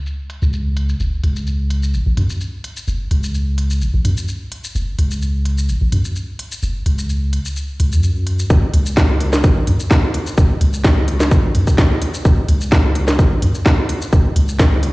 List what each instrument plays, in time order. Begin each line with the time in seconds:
0.06 shaker
0.30 closed hi-hat
0.42 sub bass C#2, shaker
0.53 shaker
0.77 closed hi-hat
0.89 shaker
1.00 sub bass F#1, shaker
1.24 sub bass C#2, closed hi-hat
1.36 shaker
1.47 shaker
1.70 closed hi-hat
1.83 shaker
1.94 sub bass F#1, shaker
2.06 sub bass A1
2.17 sub bass F#2, closed hi-hat
2.30 shaker
2.41 shaker
2.64 closed hi-hat
2.77 shaker
2.88 sub bass F#1, shaker
3.11 sub bass C#2, closed hi-hat
3.23 shaker
3.34 shaker
3.58 closed hi-hat
3.70 shaker
3.81 sub bass F#1, shaker
3.94 sub bass A1
4.05 sub bass F#2, closed hi-hat
4.17 shaker
4.28 shaker
4.52 closed hi-hat
4.64 shaker
4.75 sub bass F#1, shaker
4.99 sub bass C#2, closed hi-hat
5.11 shaker
5.22 shaker
5.45 closed hi-hat
5.58 shaker
5.69 sub bass F#1, shaker
5.81 sub bass A1
5.92 sub bass F#2, closed hi-hat
6.05 shaker
6.16 shaker
6.39 closed hi-hat
6.52 shaker
6.63 sub bass F#1, shaker
6.86 sub bass C#2, closed hi-hat
6.98 closed hi-hat, shaker
7.09 shaker
7.33 closed hi-hat
7.45 shaker
7.56 shaker
7.80 sub bass C#2, closed hi-hat
7.92 sub bass F#2, shaker
8.03 shaker
8.27 closed hi-hat
8.39 shaker
8.50 sub bass F#1, kick, shaker
8.74 sub bass C#2, closed hi-hat
8.86 shaker
8.97 kick, snare, shaker
9.20 closed hi-hat
9.33 snare, shaker
9.44 sub bass F#1, kick, shaker
9.56 sub bass A1
9.67 sub bass F#2, closed hi-hat
9.80 shaker
9.91 kick, snare, shaker
10.14 closed hi-hat
10.27 shaker
10.38 sub bass F#1, kick, shaker
10.61 sub bass C#2, closed hi-hat
10.73 shaker
10.85 kick, snare, shaker
11.08 closed hi-hat
11.20 snare, shaker
11.31 sub bass F#1, kick, shaker
11.44 sub bass A1
11.55 sub bass F#2, closed hi-hat
11.67 kick, shaker
11.78 kick, snare, shaker
12.02 closed hi-hat
12.14 shaker
12.25 sub bass F#1, kick, shaker
12.49 sub bass C#2, closed hi-hat
12.61 shaker
12.72 kick, snare, shaker
12.95 closed hi-hat
13.08 snare, shaker
13.19 sub bass F#1, kick, shaker
13.31 sub bass A1
13.42 sub bass F#2, closed hi-hat
13.55 shaker
13.66 kick, snare, shaker
13.89 closed hi-hat
14.02 shaker
14.13 sub bass F#1, kick, shaker
14.36 sub bass C#2, closed hi-hat
14.48 shaker
14.59 kick, snare, shaker
14.83 closed hi-hat